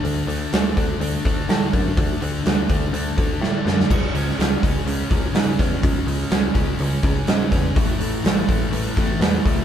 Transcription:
<<
  \new Staff \with { instrumentName = "Distorted electric guitar" } { \clef bass \time 4/4 \key d \lydian \tempo 4 = 124 <d a d'>8 <d a d'>8 <d a d'>8 <d a d'>8 <d a d'>8 <d a d'>8 <d a d'>8 <d a d'>8 | <d a d'>8 <d a d'>8 <d a d'>8 <d a d'>8 <d a d'>8 <d a d'>8 <d a d'>8 <d a d'>8 | <cis gis cis'>8 <cis gis cis'>8 <cis gis cis'>8 <cis gis cis'>8 <cis gis cis'>8 <cis gis cis'>8 <cis gis cis'>8 <cis gis cis'>8 | <cis gis cis'>8 <cis gis cis'>8 <cis gis cis'>8 <cis gis cis'>8 <cis gis cis'>8 <cis gis cis'>8 <cis gis cis'>8 <cis gis cis'>8 |
<a, e a>8 <a, e a>8 <a, e a>8 <a, e a>8 <a, e a>8 <a, e a>8 <a, e a>8 <a, e a>8 | }
  \new Staff \with { instrumentName = "Picked electric bass" } { \clef bass \time 4/4 \key d \lydian d,8 d,8 d,8 d,8 d,8 d,8 a,8 fis,8 | d,8 d,8 d,8 d,8 d,8 d,8 a,8 fis,8 | cis,8 cis,8 cis,8 cis,8 cis,8 cis,8 gis,8 e,8 | cis,8 cis,8 cis,8 cis,8 cis,8 cis,8 gis,8 e,8 |
a,,8 a,,8 a,,8 a,,8 a,,8 a,,8 e,8 cis,8 | }
  \new DrumStaff \with { instrumentName = "Drums" } \drummode { \time 4/4 hho8 hho8 <hho sn>8 <hho bd>8 hho8 <hho bd>8 <hho sn>8 <hho bd>8 | <hho bd>8 hho8 <hho sn>8 <hho bd>8 hho8 <hho bd>8 sn8 sn16 sn16 | <cymc bd>8 hho16 sn16 <hho sn>8 <hho bd>8 hho8 <hho bd>8 <hho sn>8 <hho bd sn>8 | <hho bd>8 hho8 <hho sn>8 <hho bd>8 hho8 <hho bd>8 <hho sn>8 <hho bd sn>8 |
<hho bd>8 hho8 <hho sn>8 <hho bd>8 hho8 <hho bd>8 <hho sn>8 <hho bd>8 | }
>>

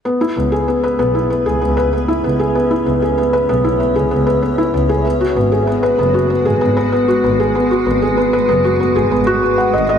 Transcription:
<<
  \new Staff \with { instrumentName = "Ambient pad" } { \time 4/4 \key cis \minor \tempo 4 = 96 << { <cis' e''>1~ | <cis' e''>1 | <gis b'>1~ | <gis b'>1 | } \\ { b'1 | cis''1 | fis'1~ | fis'1 | } >> }
  \new Staff \with { instrumentName = "Felt piano" } { \time 4/4 \key cis \minor b16 e'16 b16 gis'16 b16 b'16 b16 e'16 b16 gis'16 b16 b'16 b16 e'16 b16 gis'16 | b16 e'16 b16 gis'16 b16 b'16 b16 e'16 b16 gis'16 b16 b'16 b16 e'16 b16 gis'16 | b16 fis'16 b16 gis'16 b16 b'16 b16 fis'16 b16 gis'16 b16 b'16 b16 fis'16 b16 gis'16 | b16 fis'16 b16 gis'16 b16 b'16 b16 fis'16 b16 gis'16 b16 fis'16 b16 fis''16 dis''16 dis''16 | }
  \new Staff \with { instrumentName = "Double bass section" } { \clef bass \time 4/4 \key cis \minor r8 cis,16 r8. b,,16 r8 cis,16 cis,16 r8. cis,16 r16 | r8 cis,16 r8. b,,16 r8 cis,16 cis,16 r8. cis,16 r16 | r8 gis,,16 r8. fis,,16 r8 gis,,16 gis,,16 r8. gis,,16 r16 | r8 gis,,16 r8. fis,,16 r8 gis,,16 gis,,16 r8. gis,,16 r16 | }
>>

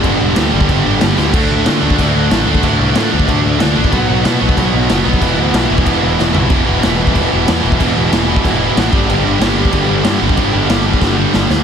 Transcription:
<<
  \new Staff \with { instrumentName = "Distorted electric guitar" } { \clef bass \time 4/4 \key e \minor \tempo 4 = 186 <g, d g b d'>2.~ <g, d g b d'>8 <g, d g b d'>8 | <d fis a d'>2.~ <d fis a d'>8 <d fis a d'>8 | <d fis a d'>2.~ <d fis a d'>8 <d fis a d'>8 | <b, fis b dis'>2.~ <b, fis b dis'>8 <b, fis b dis'>8 |
<e g b e'>2.~ <e g b e'>8 <e g b e'>8 | <e g b e'>1 | <e g b e'>2.~ <e g b e'>8 <g, d g b d'>8~ | <g, d g b d'>2.~ <g, d g b d'>8 <g, d g b d'>8~ |
<g, d g b d'>2.~ <g, d g b d'>8 r8 | }
  \new Staff \with { instrumentName = "Distorted electric guitar" } { \clef bass \time 4/4 \key e \minor <g, d g>4 <g, d g>8 <g, d g>8 <g, d g>4 <g, d g>8 <g, d g>8 | <d a d'>4 <d a d'>8 <d a d'>8 <d a d'>4 <d a d'>8 <d a d'>8 | <d a d'>4 <d a d'>8 <d a d'>8 <d a d'>4 <d a d'>8 <d a d'>8 | <b, fis b>4 <b, fis b>8 <b, fis b>8 <b, fis b>4 <b, fis b>8 <b, fis b>8 |
<e, b, e>4 <e, b, e>8 <e, b, e>8 <e, b, e>4 <e, b, e>8 <e, b, e>8 | <e, b, e>8 <e, b, e>8 <e, b, e>8 <e, b, e>8 <e, b, e>8 <e, b, e>8 <e, b, e>8 <e, b, e>8 | <e, b, e>8 <e, b, e>8 <e, b, e>8 <e, b, e>8 <e, b, e>8 <e, b, e>8 <e, b, e>8 <g, d g>8 | <g, d g>8 <g, d g>8 <g, d g>8 <g, d g>8 <g, d g>8 <g, d g>8 <g, d g>8 <g, d g>8 |
<g, d g>8 <g, d g>8 <g, d g>8 <g, d g>8 <g, d g>8 <g, d g>8 <g, d g>8 <g, d g>8 | }
  \new Staff \with { instrumentName = "Distorted electric guitar" } { \clef bass \time 4/4 \key e \minor <g, d g>4 <g, d g>8 <g, d g>8 <g, d g>4 <g, d g>8 <g, d g>8 | <d a d'>4 <d a d'>8 <d a d'>8 <d a d'>4 <d a d'>8 <d a d'>8 | <d a d'>4 <d a d'>8 <d a d'>8 <d a d'>4 <d a d'>8 <d a d'>8 | <b, fis b>4 <b, fis b>8 <b, fis b>8 <b, fis b>4 <b, fis b>8 <b, fis b>8 |
<e, b, e>4 <e, b, e>8 <e, b, e>8 <e, b, e>4 <e, b, e>8 <e, b, e>8 | <e, b, e>8 <e, b, e>8 <e, b, e>8 <e, b, e>8 <e, b, e>8 <e, b, e>8 <e, b, e>8 <e, b, e>8 | <e, b, e>8 <e, b, e>8 <e, b, e>8 <e, b, e>8 <e, b, e>8 <e, b, e>8 <e, b, e>8 <g, d g>8 | <g, d g>8 <g, d g>8 <g, d g>8 <g, d g>8 <g, d g>8 <g, d g>8 <g, d g>8 <g, d g>8 |
<g, d g>8 <g, d g>8 <g, d g>8 <g, d g>8 <g, d g>8 <g, d g>8 <g, d g>8 <g, d g>8 | }
  \new Staff \with { instrumentName = "Picked electric bass" } { \clef bass \time 4/4 \key e \minor g,,8 e,,8 d,8 g,,8 g,,8 g,,8 g,,8 d,8 | d,8 d,8 d8 d,8 d,8 d,8 a,,8 d,8 | d,8 c,8 a,8 d,8 d,8 d,8 d,8 a,,8 | b,,8 b,,8 b,8 b,,8 b,,8 b,,8 fis,,8 b,,8 |
e,,8 d,8 b,,8 e,,8 e,,8 e,,8 e,,8 b,,8 | e,,8 e,,8 e,,4 e,,8 e,,8 e,8 e,,8 | e,,8 e,,8 e,,4 e,,4 a,,8 g,,8 | g,,8 g,,8 g,,4 g,,8 g,,8 g,8 g,,8 |
g,,8 g,,8 g,,4 g,,4 g,,8 d,8 | }
  \new DrumStaff \with { instrumentName = "Drums" } \drummode { \time 4/4 <cymc bd>4 <cymc sn>8. bd16 <cymc bd>4 <cymc sn>8 sn8 | <cymc bd>4 <cymc sn>8. bd16 <cymc bd>4 <cymc sn>8. bd16 | <cymc bd>4 <cymc sn>8. bd16 <cymc bd>4 <cymc sn>8. bd16 | <cymc bd>4 <cymc sn>8. bd16 <cymc bd>4 <cymc sn>8. bd16 |
<cymc bd>4 <cymc sn>8. bd16 <cymc bd>4 sn8 tomfh8 | <cymc bd>4 <cymc sn>8. bd16 <cymc bd>4 <cymc sn>8. bd16 | <cymc bd>4 <cymc sn>8. bd16 <cymc bd>4 <cymc sn>8 bd8 | cymc4 <cymc sn>8. bd16 <cymc bd>4 <cymc sn>8. bd16 |
<cymc bd>4 <cymc sn>8. bd16 <bd sn>4 sn8 sn8 | }
>>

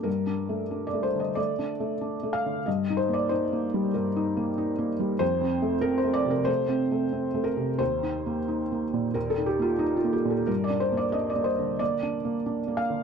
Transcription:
<<
  \new Staff \with { instrumentName = "Felt piano" } { \time 4/4 \key g \minor \tempo 4 = 92 bes'4~ bes'16 d''16 c''16 ees''16 d''4. f''8 | ees''8 c''16 d''16 c''4 bes'4. r8 | c''4 bes'16 c''16 d''16 bes'16 c''4. bes'8 | c''2 bes'16 a'16 g'16 f'16 ees'16 f'16 g'16 a'16 |
bes'16 d''16 c''16 d''16 ees''16 d''16 c''8 d''4. f''8 | }
  \new Staff \with { instrumentName = "Felt piano" } { \time 4/4 \key g \minor \tuplet 3/2 { g,8 d'8 a8 d'8 a8 d8 a8 d'8 a8 d'8 a8 d8 } | \tuplet 3/2 { g,8 ees'8 bes8 ees'8 bes8 g8 g,8 ees'8 bes8 ees'8 bes8 g8 } | \tuplet 3/2 { f,8 c'8 a8 c'8 a8 c8 a8 c'8 a8 c'8 a8 c8 } | \tuplet 3/2 { ees,8 ees'8 bes8 ees'8 bes8 bes,8 ees,8 ees'8 bes8~ bes8 bes8 bes,8 } |
\tuplet 3/2 { g,8 d'8 bes8 d'8 bes8 d8 bes8 d'8 bes8 d'8 bes8 d8 } | }
>>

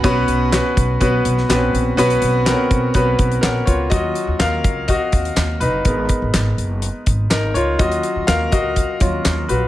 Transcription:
<<
  \new Staff \with { instrumentName = "Grand piano" } { \time 4/4 \key ces \lydian \tempo 4 = 124 << { <b cis' fis' b'>8. r16 <b cis' fis' b'>8. r16 <b cis' fis' b'>8. r16 <b c' cis' fis' b'>8. r16 | <b cis' fis' b'>8. r16 <b c' cis' fis' bes'>8. r16 <b cis' fis' b'>8. r16 <cis' bes' fis''>8 <f' cis''>8 | <ges' ees''>4 <bes' f''>4 <ges' ees''>4. <ees' ces''>8~ | <ees' ces''>4. r4. <ees' bes'>8 <f' des''>8 |
<ges' ees''>4 <bes' f''>8 <ges' ees''>2 <ges' ces''>8 | } \\ { r1 | r1 | <ges des' f'>1 | <aes ces' bes'>8 r2. r8 |
<ges des' f'>4. r4 <ges des' f'>8 r4 | } >> }
  \new Staff \with { instrumentName = "Upright bass" } { \clef bass \time 4/4 \key ces \lydian b,,8 b,,8. r16 b,,8 b,,8 b,,8 bes,,8 bes,,8 | b,,8 b,,8. r16 b,,8 b,,8 b,,8 bes,,8 cis,8 | ees,8 r16 ees,16 ees,8 des,8. r16 ees,8 ees,8 ges,,8 | aes,,8 r16 aes,,16 aes,,8 ges,,8. r16 aes,,8 aes,,8 des,8 |
ees,8 r16 ees,16 ees,8 des,8. r16 ees,8 ees,8 bes,,8 | }
  \new DrumStaff \with { instrumentName = "Drums" } \drummode { \time 4/4 <hh bd>8 hh8 <hc hh sn>8 <hh bd>8 <hh bd>8 hh16 sn16 <hc hh sn>8 hh8 | hh16 hh16 hh8 <hc hh sn>8 <hh bd>8 <hh bd>8 <hh bd>16 hh16 <hc hh sn>8 <hh bd>8 | <hh bd>8 hh8 <hc hh sn>8 <hh bd>8 <hh bd>8 <hh bd>16 hh16 <hc hh sn>8 hh8 | <hh bd>8 <hh bd>8 <hc hh sn>8 hh8 hh8 <hh bd>8 <hc hh sn>8 hh8 |
<hh bd>16 hh16 hh8 <hc hh sn>8 <hh bd>8 <hh bd>8 <hh bd>8 <hc hh sn>8 hh8 | }
>>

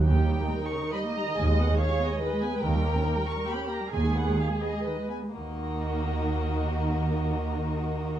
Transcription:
<<
  \new Staff \with { instrumentName = "Violin section" } { \time 3/4 \key ees \minor \tempo 4 = 135 g''4. des'''8 ces'''8 bes''8 | aes''8 ges''8 f''8 ees''4 aes''8 | g''4. des'''8 ces'''8 bes''8 | aes''8 ges''8 f''8 ees''4 aes''8 |
ees''2.~ | ees''2. | }
  \new Staff \with { instrumentName = "Violin section" } { \time 3/4 \key ees \minor g'4 bes'4 ees''4~ | ees''4 des''4 ces''4 | bes'2 g'4 | aes'2 ces''8 r8 |
<ges' bes'>2.~ | <ges' bes'>2. | }
  \new Staff \with { instrumentName = "Viola section" } { \clef bass \time 3/4 \key ees \minor << { ees'2. | aes'2. | bes'2. | aes'2~ aes'8 r8 |
ees'2.~ | ees'2. | } \\ { des16 ees16 g16 bes16 g16 ees16 des16 ees16 g16 bes16 g16 ees16 | ees16 aes16 ces'16 aes16 ees16 aes16 ces'16 aes16 ees16 aes16 ces'16 aes16 | ees16 g16 bes16 des'16 bes16 g16 ees16 g16 bes16 des'16 bes16 g16 | ees16 aes16 ces'16 aes16 ees16 aes16 ces'16 aes16 ees16 aes16 ces'16 aes16 |
bes2.~ | bes2. | } >> }
  \new Staff \with { instrumentName = "Cello section" } { \clef bass \time 3/4 \key ees \minor ees,4 r2 | ees,4 r2 | ees,4 r2 | ees,4 r2 |
ees2.~ | ees2. | }
  \new Staff \with { instrumentName = "Double bass section" } { \clef bass \time 3/4 \key ees \minor ees,4 r2 | ees,4 r2 | ees,4 r2 | ees,4 r2 |
ees,2.~ | ees,2. | }
>>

